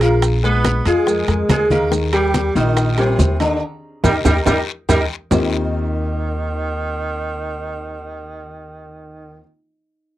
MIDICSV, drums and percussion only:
0, 0, Header, 1, 2, 480
1, 0, Start_track
1, 0, Key_signature, -3, "major"
1, 0, Tempo, 424628
1, 253, Time_signature, 4, 2, 24, 8
1, 11506, End_track
2, 0, Start_track
2, 0, Title_t, "Drums"
2, 11, Note_on_c, 9, 65, 66
2, 14, Note_on_c, 9, 73, 61
2, 25, Note_on_c, 9, 70, 27
2, 124, Note_off_c, 9, 65, 0
2, 127, Note_off_c, 9, 73, 0
2, 138, Note_off_c, 9, 70, 0
2, 252, Note_on_c, 9, 63, 32
2, 252, Note_on_c, 9, 65, 91
2, 253, Note_on_c, 9, 60, 60
2, 254, Note_on_c, 9, 74, 66
2, 261, Note_on_c, 9, 70, 69
2, 365, Note_off_c, 9, 63, 0
2, 365, Note_off_c, 9, 65, 0
2, 366, Note_off_c, 9, 60, 0
2, 367, Note_off_c, 9, 74, 0
2, 374, Note_off_c, 9, 70, 0
2, 495, Note_on_c, 9, 63, 32
2, 497, Note_on_c, 9, 60, 34
2, 505, Note_on_c, 9, 70, 28
2, 608, Note_off_c, 9, 63, 0
2, 610, Note_off_c, 9, 60, 0
2, 618, Note_off_c, 9, 70, 0
2, 730, Note_on_c, 9, 63, 91
2, 730, Note_on_c, 9, 65, 90
2, 732, Note_on_c, 9, 60, 59
2, 736, Note_on_c, 9, 73, 70
2, 740, Note_on_c, 9, 70, 65
2, 843, Note_off_c, 9, 63, 0
2, 844, Note_off_c, 9, 65, 0
2, 845, Note_off_c, 9, 60, 0
2, 849, Note_off_c, 9, 73, 0
2, 853, Note_off_c, 9, 70, 0
2, 967, Note_on_c, 9, 65, 65
2, 970, Note_on_c, 9, 63, 31
2, 972, Note_on_c, 9, 60, 33
2, 976, Note_on_c, 9, 73, 65
2, 982, Note_on_c, 9, 70, 28
2, 1080, Note_off_c, 9, 65, 0
2, 1083, Note_off_c, 9, 63, 0
2, 1085, Note_off_c, 9, 60, 0
2, 1089, Note_off_c, 9, 73, 0
2, 1095, Note_off_c, 9, 70, 0
2, 1205, Note_on_c, 9, 63, 33
2, 1209, Note_on_c, 9, 60, 67
2, 1209, Note_on_c, 9, 74, 69
2, 1222, Note_on_c, 9, 70, 66
2, 1318, Note_off_c, 9, 63, 0
2, 1322, Note_off_c, 9, 60, 0
2, 1322, Note_off_c, 9, 74, 0
2, 1335, Note_off_c, 9, 70, 0
2, 1449, Note_on_c, 9, 63, 33
2, 1449, Note_on_c, 9, 65, 61
2, 1452, Note_on_c, 9, 60, 30
2, 1459, Note_on_c, 9, 70, 28
2, 1562, Note_off_c, 9, 63, 0
2, 1562, Note_off_c, 9, 65, 0
2, 1565, Note_off_c, 9, 60, 0
2, 1572, Note_off_c, 9, 70, 0
2, 1686, Note_on_c, 9, 63, 77
2, 1690, Note_on_c, 9, 65, 82
2, 1690, Note_on_c, 9, 66, 66
2, 1693, Note_on_c, 9, 60, 33
2, 1693, Note_on_c, 9, 61, 82
2, 1693, Note_on_c, 9, 73, 70
2, 1695, Note_on_c, 9, 70, 68
2, 1799, Note_off_c, 9, 63, 0
2, 1803, Note_off_c, 9, 65, 0
2, 1803, Note_off_c, 9, 66, 0
2, 1806, Note_off_c, 9, 60, 0
2, 1806, Note_off_c, 9, 61, 0
2, 1806, Note_off_c, 9, 73, 0
2, 1808, Note_off_c, 9, 70, 0
2, 1926, Note_on_c, 9, 63, 73
2, 1932, Note_on_c, 9, 73, 65
2, 1934, Note_on_c, 9, 70, 27
2, 2039, Note_off_c, 9, 63, 0
2, 2045, Note_off_c, 9, 73, 0
2, 2047, Note_off_c, 9, 70, 0
2, 2166, Note_on_c, 9, 63, 32
2, 2168, Note_on_c, 9, 60, 65
2, 2172, Note_on_c, 9, 74, 71
2, 2176, Note_on_c, 9, 70, 66
2, 2279, Note_off_c, 9, 63, 0
2, 2281, Note_off_c, 9, 60, 0
2, 2285, Note_off_c, 9, 74, 0
2, 2289, Note_off_c, 9, 70, 0
2, 2406, Note_on_c, 9, 65, 82
2, 2409, Note_on_c, 9, 63, 35
2, 2410, Note_on_c, 9, 60, 33
2, 2413, Note_on_c, 9, 70, 28
2, 2519, Note_off_c, 9, 65, 0
2, 2522, Note_off_c, 9, 63, 0
2, 2523, Note_off_c, 9, 60, 0
2, 2526, Note_off_c, 9, 70, 0
2, 2647, Note_on_c, 9, 65, 67
2, 2648, Note_on_c, 9, 60, 56
2, 2649, Note_on_c, 9, 70, 63
2, 2650, Note_on_c, 9, 63, 92
2, 2652, Note_on_c, 9, 73, 74
2, 2760, Note_off_c, 9, 65, 0
2, 2761, Note_off_c, 9, 60, 0
2, 2762, Note_off_c, 9, 70, 0
2, 2763, Note_off_c, 9, 63, 0
2, 2765, Note_off_c, 9, 73, 0
2, 2889, Note_on_c, 9, 63, 31
2, 2894, Note_on_c, 9, 70, 29
2, 2894, Note_on_c, 9, 73, 68
2, 2895, Note_on_c, 9, 60, 33
2, 3002, Note_off_c, 9, 63, 0
2, 3007, Note_off_c, 9, 70, 0
2, 3007, Note_off_c, 9, 73, 0
2, 3008, Note_off_c, 9, 60, 0
2, 3127, Note_on_c, 9, 65, 82
2, 3131, Note_on_c, 9, 60, 65
2, 3131, Note_on_c, 9, 74, 68
2, 3132, Note_on_c, 9, 63, 31
2, 3133, Note_on_c, 9, 70, 68
2, 3241, Note_off_c, 9, 65, 0
2, 3244, Note_off_c, 9, 60, 0
2, 3244, Note_off_c, 9, 74, 0
2, 3245, Note_off_c, 9, 63, 0
2, 3246, Note_off_c, 9, 70, 0
2, 3365, Note_on_c, 9, 65, 64
2, 3370, Note_on_c, 9, 60, 33
2, 3372, Note_on_c, 9, 63, 31
2, 3372, Note_on_c, 9, 70, 28
2, 3478, Note_off_c, 9, 65, 0
2, 3483, Note_off_c, 9, 60, 0
2, 3485, Note_off_c, 9, 63, 0
2, 3485, Note_off_c, 9, 70, 0
2, 3603, Note_on_c, 9, 66, 62
2, 3609, Note_on_c, 9, 63, 81
2, 3609, Note_on_c, 9, 73, 68
2, 3613, Note_on_c, 9, 60, 33
2, 3613, Note_on_c, 9, 61, 78
2, 3613, Note_on_c, 9, 70, 69
2, 3717, Note_off_c, 9, 66, 0
2, 3722, Note_off_c, 9, 63, 0
2, 3722, Note_off_c, 9, 73, 0
2, 3726, Note_off_c, 9, 60, 0
2, 3726, Note_off_c, 9, 61, 0
2, 3726, Note_off_c, 9, 70, 0
2, 3844, Note_on_c, 9, 65, 66
2, 3851, Note_on_c, 9, 73, 64
2, 3854, Note_on_c, 9, 70, 26
2, 3957, Note_off_c, 9, 65, 0
2, 3964, Note_off_c, 9, 73, 0
2, 3967, Note_off_c, 9, 70, 0
2, 4564, Note_on_c, 9, 65, 89
2, 4567, Note_on_c, 9, 61, 91
2, 4568, Note_on_c, 9, 64, 96
2, 4569, Note_on_c, 9, 74, 97
2, 4575, Note_on_c, 9, 70, 89
2, 4677, Note_off_c, 9, 65, 0
2, 4680, Note_off_c, 9, 61, 0
2, 4681, Note_off_c, 9, 64, 0
2, 4682, Note_off_c, 9, 74, 0
2, 4688, Note_off_c, 9, 70, 0
2, 4803, Note_on_c, 9, 65, 90
2, 4808, Note_on_c, 9, 64, 92
2, 4810, Note_on_c, 9, 70, 93
2, 4811, Note_on_c, 9, 61, 94
2, 4916, Note_off_c, 9, 65, 0
2, 4921, Note_off_c, 9, 64, 0
2, 4923, Note_off_c, 9, 70, 0
2, 4924, Note_off_c, 9, 61, 0
2, 5041, Note_on_c, 9, 65, 92
2, 5047, Note_on_c, 9, 74, 97
2, 5049, Note_on_c, 9, 64, 87
2, 5050, Note_on_c, 9, 61, 96
2, 5053, Note_on_c, 9, 70, 96
2, 5154, Note_off_c, 9, 65, 0
2, 5160, Note_off_c, 9, 74, 0
2, 5162, Note_off_c, 9, 64, 0
2, 5163, Note_off_c, 9, 61, 0
2, 5166, Note_off_c, 9, 70, 0
2, 5525, Note_on_c, 9, 74, 88
2, 5526, Note_on_c, 9, 61, 89
2, 5527, Note_on_c, 9, 65, 87
2, 5531, Note_on_c, 9, 64, 91
2, 5533, Note_on_c, 9, 70, 96
2, 5638, Note_off_c, 9, 74, 0
2, 5639, Note_off_c, 9, 61, 0
2, 5640, Note_off_c, 9, 65, 0
2, 5644, Note_off_c, 9, 64, 0
2, 5646, Note_off_c, 9, 70, 0
2, 6002, Note_on_c, 9, 66, 94
2, 6006, Note_on_c, 9, 74, 100
2, 6008, Note_on_c, 9, 64, 86
2, 6009, Note_on_c, 9, 61, 85
2, 6010, Note_on_c, 9, 70, 95
2, 6115, Note_off_c, 9, 66, 0
2, 6119, Note_off_c, 9, 74, 0
2, 6121, Note_off_c, 9, 64, 0
2, 6122, Note_off_c, 9, 61, 0
2, 6123, Note_off_c, 9, 70, 0
2, 11506, End_track
0, 0, End_of_file